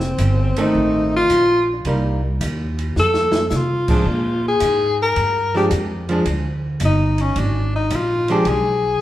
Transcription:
Already playing: F1 C4
0.00 snare
0.18 G1, kick, hi-hat pedal, ride
0.56 D#3 A3 C4 D#4, ride
0.75 A1, kick
1.16 F4
1.30 A#1, kick, hi-hat pedal, ride
1.73 D4
1.85 C2 G3 A#3 D#4, kick, ride
2.40 D#2, kick, hi-hat pedal, ride
2.79 ride
2.96 F2 A4, snare
3.14 snare
3.32 snare
3.50 C3, snare, hi-hat pedal
3.56 F4
3.88 F3 G#3 D4, kick, crash
4.06 A#2
4.48 G#4
4.60 G#2, kick, hi-hat pedal, ride
5.02 A#4
5.16 G2, kick, ride
5.55 F3 G#3 D4 G4
5.71 F2, kick, hi-hat pedal, ride
6.09 F3 G#3 D4, ride
6.25 D2, kick, ride
6.80 G1, kick, hi-hat pedal, ride
6.85 D#4
7.18 C#4, ride
7.36 G#1 D4, kick, ride
7.75 D#4
7.90 A#1, kick, hi-hat pedal, ride
7.95 F4
8.28 F3 G#3 D4 G4, ride
8.45 B1 G#4, kick, ride

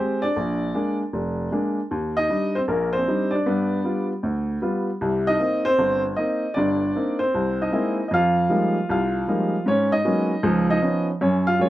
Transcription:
Already playing: G#3 C5
0.00 C4 G4
0.22 D4 D5
0.37 A#1
0.74 G#3 A#3 D4
1.13 F1
1.52 G#3 A#3 D4
1.91 D#2
2.17 D#4 D#5
2.30 G3 D4 D#4
2.55 C4 C5
2.68 A#1 A#4
2.72 A#3
2.93 C5
2.97 C4
3.08 G3 D4 D#4
3.31 D5
3.35 D4
3.46 G2 B3
3.84 G3 B3 F4
4.23 D2
4.62 G3 B3 F4
5.01 C2 C3
5.27 D#4 D#5
5.40 A#3 C4 D#4
5.65 C4 C5
5.79 G1
6.16 A#3 C4 D#4 D#5
6.54 G1 G2 D5
6.58 D4
6.96 A#3 C4 D#4
7.19 C5
7.23 C4
7.34 C2
7.62 D#4 D#5
7.72 G#3 A#3 C4 E4
8.08 F2 D#5
8.14 F4 F5
8.49 F3 G3 G#3 A#3 D#4
8.89 C2 F4 F5
9.28 F3 G3 G#3 A#3 D#4
9.66 G#2 C#4 C#5
9.92 D#4 D#5
10.05 F#3 G#3 A#3 B3 C#4
10.43 C#2 F3
10.70 D#4 D#5
10.82 F3 B3 C#4 D#4
11.21 F#2 C#4 C#5
11.47 F4 F5
11.59 F#3 G#3 A#3 C#4 F4 C#5

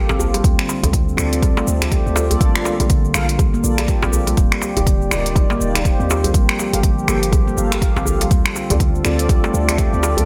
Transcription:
Already playing: F3 A#3 G4 A4 F5
0.09 G1 C4, djembe slap, shaker
0.19 F4, djembe bass, shaker
0.34 G3, closed hi-hat, djembe tone, shaker
0.44 D2 D3 G3 C4 F4, kick, closed hi-hat, shaker
0.59 finger snap, shaker
0.69 djembe slap, shaker
0.83 D2 C4 F4 A4 D5, closed hi-hat, djembe tone, djembe bass, shaker
0.93 D3, kick, closed hi-hat, shaker
1.09 shaker
1.17 D2 C4 F4 A4 D5, finger snap, djembe tone, shaker
1.33 closed hi-hat, shaker
1.42 G3, kick, closed hi-hat, djembe tone, shaker
1.57 A3, djembe slap, shaker
1.67 D2 A3, shaker
1.82 finger snap, closed hi-hat, djembe tone, shaker
1.92 G4, kick, closed hi-hat, shaker
2.06 D2 C4, shaker
2.16 F4, djembe slap, shaker
2.31 G3 A#3 F4 A4 D5, closed hi-hat, djembe bass, shaker
2.41 A#1 G3 A#3, kick, closed hi-hat, shaker
2.56 finger snap, shaker
2.65 djembe slap, shaker
2.80 A#1 A#3 F4 A4 D5, closed hi-hat, djembe tone, shaker
2.90 D3, kick, closed hi-hat, shaker
3.05 shaker
3.14 A#1 A#3 F4 A4 F5, finger snap, djembe tone, shaker
3.29 closed hi-hat, shaker
3.39 G3, kick, closed hi-hat, djembe bass, shaker
3.54 A#3, shaker
3.64 A#1 A#3 F4 A4 D5, shaker
3.78 finger snap, closed hi-hat, djembe tone, shaker
3.88 G4, kick, closed hi-hat, shaker
4.02 A#1 C4, djembe slap, shaker
4.13 F4, djembe bass, shaker
4.27 G3, closed hi-hat, djembe tone, shaker
4.37 D#1 G3 A#3 G4 D5, kick, closed hi-hat, shaker
4.52 finger snap, shaker
4.61 djembe slap, shaker
4.77 D#1 A#3 D#4 G4 D5, closed hi-hat, djembe tone, djembe bass, shaker
4.87 D3, kick, closed hi-hat, shaker
5.02 shaker
5.11 D#1 A#3 D#4 F4 G4 D5, finger snap, djembe tone, shaker
5.26 closed hi-hat, shaker
5.35 G3, kick, closed hi-hat, djembe tone, shaker
5.50 A#3, djembe slap, shaker
5.61 D#1 A#3 D#4 G4 D5, shaker
5.75 finger snap, closed hi-hat, djembe tone, shaker
5.85 A#3 D#4 G4 C5, kick, closed hi-hat, shaker
6.00 D#2 C4, shaker
6.10 F4, djembe slap, shaker
6.24 G3, closed hi-hat, djembe bass, shaker
6.34 G1 F3 G3 G4 A4, kick, closed hi-hat, shaker
6.49 finger snap, shaker
6.59 djembe slap, shaker
6.73 G1 A#3 G4 A4 F5, closed hi-hat, djembe tone, shaker
6.83 D3, kick, closed hi-hat, shaker
6.99 shaker
7.08 G1 A#3 F4 G4 A4 G5, finger snap, djembe tone, shaker
7.23 closed hi-hat, shaker
7.32 G3, kick, closed hi-hat, djembe bass, shaker
7.48 A#3, shaker
7.57 G1 A#3 G4 A4 F5, shaker
7.72 finger snap, closed hi-hat, djembe tone, shaker
7.82 G4, kick, closed hi-hat, shaker
7.96 G1 C4, djembe slap, shaker
8.06 F4, djembe bass, shaker
8.21 G3, closed hi-hat, djembe tone, shaker
8.31 D2 D3 G3 C4 F4, kick, closed hi-hat, shaker
8.46 finger snap, shaker
8.56 djembe slap, shaker
8.70 D2 C4 F4 A4 D5, closed hi-hat, djembe tone, djembe bass, shaker
8.80 D3, kick, closed hi-hat, shaker
8.95 shaker
9.05 D2 C4 F4 A4 D5, finger snap, djembe tone, shaker
9.19 closed hi-hat, shaker
9.29 G3, kick, closed hi-hat, djembe tone, shaker
9.44 A3, djembe slap, shaker
9.54 D2 A3, shaker
9.69 finger snap, closed hi-hat, djembe tone, shaker
9.78 G4, kick, closed hi-hat, shaker
9.93 D2 C4, shaker
10.03 F4, djembe slap, shaker
10.17 G3 A#3 F4 A4 D5, closed hi-hat, djembe bass, shaker

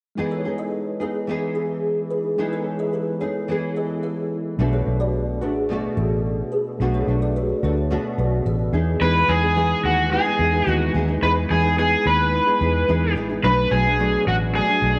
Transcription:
0.16 E3 G#3 B3 D#4 E4 G#4
0.21 B4
0.31 A4 C#5
0.45 B3 D#4 G#4
0.58 B4 D#5
1.00 B3 D#4 G#4 B4
1.27 E3 B3 D#4 G#4
1.55 E4 G#4
2.11 G#4 B4
2.37 E3 G#3 B3 D#4 E4 G#4
2.42 B4
2.53 A4 C#5
2.79 B4 D#5
2.93 G#4 B4
3.21 B3 D#4 G#4 A4 C#5
3.48 E3 B3 G#4
3.76 B4 D#5
4.03 B4 E5
4.57 B1 B2 A3 D4 F#4
4.62 B4
4.73 A4 C#5
4.87 B1
5.00 B4 D5
5.41 A1 A3 D4 F#4 G#4 B4
5.69 B2 A3 D4 F#4
5.97 A1 F#4 A4
6.52 G#4 B4
6.78 B1 B2 A3 D4 F#4
6.83 B4
6.94 A4 C#5
7.07 B1 A3 D4 F#4
7.22 B4 D5
7.36 F#4 B4
7.63 D2 A3 D4 F#4 A4 C#5
7.91 B2 A3 D4 F#4
8.18 B1 B4 D5
8.45 A1 B4 E5
8.73 E2 E3 B3 D#4 G#4
9.00 E2 E3 G#3 B3 D#4 E4 G#4 B4
9.28 E2 E3 B3 D#4 G#4
9.43 B3 D#4 G#4
9.56 E3 B3 D#4 G#4
9.84 D#2 F#4
10.11 E3 G#3 B3 D#4 E4 G#4 B4
10.25 B3 D#4 G#4
10.38 E2 E3 B3 D#4 G#4
10.53 B3 D#4 G#4
10.67 D#2 E3 B3 D#4 F#4 G#4
10.94 D#2 E3 B3 D#4 G#4
11.08 B3 D#4 G#4
11.22 E2 E3 G#3 B3 D#4 E4 G#4 B4
11.50 E2 E3 B3 D#4 G#4
11.64 B3 D#4 G#4
11.78 B3 D#4 G#4
12.06 D#2 B4
12.32 G#3 D#4 E4 B4
12.46 B3 D#4 G#4
12.61 E2 E3 B3 D#4 G#4
12.88 E2 E3 B3 D#4 G#4
13.15 A1 E3 B3 D#4 G#4
13.29 B3 D#4 G#4
13.43 B1 B2 F#3 A3 D4 F#4 B4
13.71 B1 B2 F#3 A3 D4 G#4
13.85 F#3 A3 D4
13.99 B2 F#3 A3 D4
14.27 A1 F#4
14.53 B2 F#3 A3 D4 F#4 G#4 D5
14.67 F#3 A3 D4
14.81 B1 B2 F#3 A3 D4
14.95 A3 D4

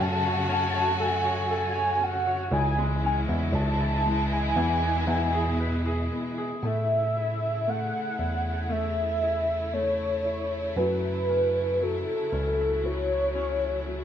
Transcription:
Already playing: C#3 F#3 A3 F#4 A4 C#5
0.00 F#2 C#4 A5
0.25 C#5
0.49 C#4 A5
0.74 C#5
0.99 A4 G#5
1.25 C#5
1.51 A4 G#5
1.75 C#5
2.00 C#4 F#5
2.27 C#5
2.52 C#2 C#3 E3 G#3 E4 G#5
2.79 G#3
3.04 C#4 G#5
3.29 E2 E4
3.53 C#2 A5
3.81 E4
4.06 G#3
4.31 E4 G#5
4.56 E2 B2 E3
4.82 B3
5.07 E2 E4
5.35 G#4
5.60 B4
5.86 G#4
6.12 B3
6.38 G#4
6.62 A2 C#3 A3 E4 G#4
6.66 E5
7.17 E4
7.67 A3 F#5
8.19 E2 E4
8.69 A3 E5
9.22 E4
9.73 A3 C#5
10.25 E4
10.76 F#2 C#3 F#3 B4
11.29 C#4
11.80 F#3 A4
12.32 C#2 C#4
12.84 F#3 C#5
13.35 C#4
13.86 F#3

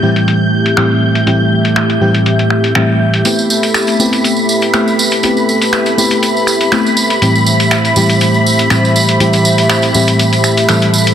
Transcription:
Already playing: A3 G4 E5 G6
0.02 A2 E3 G3 C4 E4 G4
0.16 closed hi-hat
0.28 closed hi-hat
0.66 closed hi-hat
0.77 A2 E3 G3 C4 E4 G4, finger snap, closed hi-hat
1.15 closed hi-hat
1.26 A2 E3 G3 C4 E4 G4, closed hi-hat
1.65 closed hi-hat
1.76 finger snap, closed hi-hat
1.90 closed hi-hat
2.01 A2 E3 G3 C4 E4 G4
2.15 closed hi-hat
2.26 closed hi-hat
2.39 closed hi-hat
2.50 finger snap
2.64 closed hi-hat
2.75 A2 E3 G3 C4 E4 G4, finger snap, closed hi-hat
3.14 closed hi-hat
3.25 A3 B3 C4 E4 G4 A4 B4 B5, closed hi-hat, tambourine
3.39 tambourine
3.50 tambourine
3.63 closed hi-hat, tambourine
3.74 finger snap, closed hi-hat, tambourine
3.81 E5
3.87 closed hi-hat, tambourine
3.99 A3 B3 C4 E4 G4, tambourine
4.13 closed hi-hat, tambourine
4.24 closed hi-hat, tambourine
4.37 tambourine
4.49 tambourine
4.62 closed hi-hat, tambourine
4.74 A3 B3 C4 E4 G4, finger snap, closed hi-hat, tambourine
4.88 tambourine
4.99 tambourine
5.11 closed hi-hat, tambourine
5.23 A3 B3 C4 E4 G4, closed hi-hat, tambourine
5.37 tambourine
5.49 tambourine
5.62 closed hi-hat, tambourine
5.73 finger snap, closed hi-hat, tambourine
5.86 closed hi-hat, tambourine
5.98 A3 B3 C4 E4 G4, tambourine
6.11 closed hi-hat, tambourine
6.23 closed hi-hat, tambourine
6.37 tambourine
6.47 finger snap, tambourine
6.61 closed hi-hat, tambourine
6.72 A3 B3 C4 E4 G4, finger snap, closed hi-hat, tambourine
6.86 tambourine
6.97 tambourine
7.10 closed hi-hat, tambourine
7.22 A2 E3 G3 A3 C4 E4 G4 C5 E5, closed hi-hat, tambourine
7.35 tambourine
7.46 tambourine
7.60 closed hi-hat, tambourine
7.71 finger snap, closed hi-hat, tambourine
7.85 closed hi-hat, tambourine
7.96 A2 E3 G3 C4 E4 G4, tambourine
8.10 closed hi-hat, tambourine
8.21 closed hi-hat, tambourine
8.34 tambourine
8.46 tambourine
8.59 closed hi-hat, tambourine
8.70 A2 E3 G3 C4 E4 G4, finger snap, closed hi-hat, tambourine
8.85 tambourine
8.96 tambourine
9.09 closed hi-hat, tambourine
9.20 A2 E3 G3 C4 E4 G4, closed hi-hat, tambourine
9.33 closed hi-hat, tambourine
9.45 tambourine
9.58 closed hi-hat, tambourine
9.69 finger snap, closed hi-hat, tambourine
9.82 closed hi-hat, tambourine
9.94 A2 E3 G3 C4 E4 G4, tambourine
10.08 closed hi-hat, tambourine
10.19 closed hi-hat, tambourine
10.33 closed hi-hat, tambourine
10.44 finger snap, tambourine
10.57 closed hi-hat, tambourine
10.69 A2 E3 G3 C4 E4 A4, finger snap, closed hi-hat, tambourine
10.82 closed hi-hat, tambourine
10.94 tambourine
11.07 closed hi-hat, tambourine

